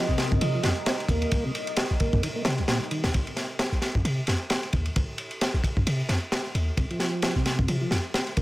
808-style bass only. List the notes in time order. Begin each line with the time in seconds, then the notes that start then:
0.09 A#1
0.32 F2
0.41 C3
0.64 F2
1.09 D#2
1.32 C2
1.91 A#1
2.13 F2
2.46 C3
2.59 C2
3.04 D#2
3.15 C2
3.72 A#1
3.95 F2
4.05 C3
4.28 F2
4.73 D#2
4.96 C2
5.54 A#1
5.77 F2
5.87 C3
6.09 F2
6.55 D#2
6.77 C2
7.36 A#1
7.59 F2
7.68 C3
7.91 F2
8.37 D#2